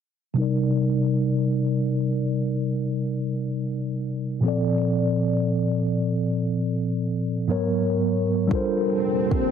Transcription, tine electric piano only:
0.34 4.38 C3 medium
0.34 4.39 G3 medium
0.34 4.40 D#4 medium
0.40 4.41 A#4 medium
0.40 4.42 D5 medium
4.41 7.44 A#2 medium
4.41 7.45 F3 medium
4.41 7.45 C4 medium
4.46 7.46 A4 medium
4.46 7.47 D5 medium
7.48 8.50 G#2 medium
7.48 8.51 F#3 medium
7.48 8.51 B3 medium
7.48 8.52 A#4 medium
7.48 8.52 C#5 medium
8.47 9.51 G3 medium
8.47 9.51 D4 medium
8.47 9.51 F4 medium
8.52 9.51 A4 medium
8.52 9.51 A#4 medium
8.52 9.51 C5 medium

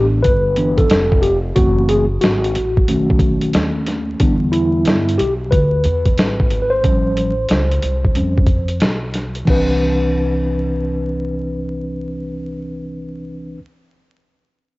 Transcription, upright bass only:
0.00 0.22 A1 medium
0.25 0.87 G1 medium
0.90 1.53 F1 medium
1.57 2.19 F#1 medium
2.22 2.53 G#1 medium
2.56 2.87 A1 medium
2.89 3.51 B1 medium
3.54 4.17 D#2 medium
4.20 4.83 E2 medium
4.86 5.17 G2 medium
5.19 5.53 B1 medium
5.53 5.83 D2 medium
5.85 6.16 E2 medium
6.18 6.81 G#1 medium
6.84 7.47 A1 medium
7.50 7.81 C#2 medium
7.83 8.14 C2 medium
8.16 8.79 F2 medium
8.82 9.44 B1 medium
9.48 13.57 C2 medium

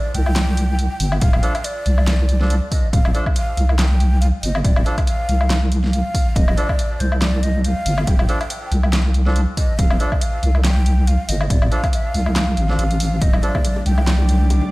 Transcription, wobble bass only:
0.14 0.89 C2 medium
1.00 1.20 G1 loud
1.22 1.42 D1 loud
1.86 2.61 C2 medium
2.93 3.13 D1 loud
3.57 4.32 C2 medium
4.43 4.63 G1 loud
4.64 4.84 D1 loud
5.29 6.03 C2 medium
6.36 6.56 D1 loud
7.00 7.75 C2 medium
7.86 8.06 G1 loud
8.07 8.27 D1 loud
8.71 9.46 C2 medium
9.79 9.99 D1 loud
10.43 11.18 C2 medium
11.29 11.49 G1 loud
11.50 11.70 D1 loud
12.14 12.57 C2 medium
12.57 12.77 A1 medium
12.78 13.20 A1 loud
13.21 13.41 D1 loud
13.86 14.60 C2 medium

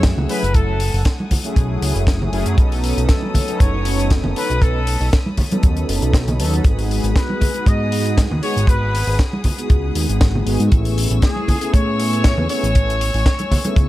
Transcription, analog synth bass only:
0.00 0.14 F#2 medium
0.17 0.27 C#2 medium
0.43 0.90 F#1 medium
0.94 1.04 F#1 medium
1.56 1.78 B1 medium
1.82 1.93 C#2 medium
1.95 2.29 F#1 medium
2.33 2.44 F#1 medium
2.46 2.56 F#2 medium
2.58 2.93 B1 medium
2.97 3.07 B1 loud
3.60 4.21 F#1 medium
4.24 4.34 F#1 medium
4.50 4.97 B1 medium
5.01 5.10 B1 loud
5.63 5.85 D#2 medium
5.89 6.00 F#1 medium
6.02 6.41 B1 medium
6.39 6.61 D#2 medium
6.64 7.00 G#1 medium
7.04 7.14 G#1 loud
7.66 8.27 G#2 medium
8.31 8.41 D#2 medium
8.57 9.04 G#1 medium
9.07 9.17 G#1 loud
9.70 9.91 C#2 medium
9.95 10.07 D#2 medium
10.09 10.43 G#1 medium
10.46 10.58 G#1 medium
10.60 10.70 G#2 medium
10.72 11.07 A1 medium
11.11 11.21 A1 loud
11.74 12.34 A2 medium
12.38 12.48 E2 medium
12.63 13.10 A1 medium
13.14 13.24 A1 loud
13.76 13.89 C#2 medium

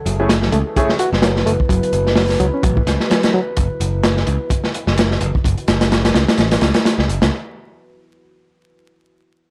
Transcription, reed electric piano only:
0.06 0.15 F#3 medium
0.42 0.51 F#3 medium
0.52 0.58 A3 loud
0.99 1.09 F#4 loud
1.23 1.45 F#3 loud
1.46 1.52 A3 loud
1.70 2.16 F#3 medium
2.17 2.23 F#3 medium
2.40 2.46 F#3 loud
2.54 2.63 C#4 medium
2.64 2.75 F#3 medium
2.77 2.81 E3 medium
3.10 3.33 F#3 medium
3.34 3.40 F#3 loud

